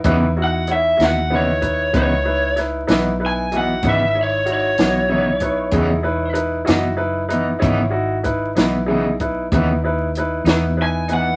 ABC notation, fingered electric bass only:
X:1
M:12/8
L:1/8
Q:3/8=63
K:C#m
V:1 name="Fingered electric bass" clef=bass
E,,3 D,,3 C,,3 B,,,3 | G,,,3 B,,,3 E,,,3 F,,,3 | G,,,3 B,,,3 D,,3 E,,3 |]